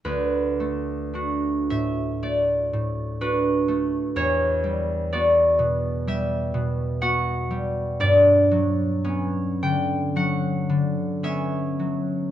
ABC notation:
X:1
M:4/4
L:1/8
Q:1/4=60
K:D
V:1 name="Harp"
B3 e d2 B2 | c2 d2 e2 f2 | d3 g f2 e2 |]
V:2 name="Harp" clef=bass
D,, A, [DF] A,, A, A,, [DF] A, | E,, G, [B,F] B,, G, B,, [B,F] G, | G,, F, [B,C] D, F, D, [B,C] F, |]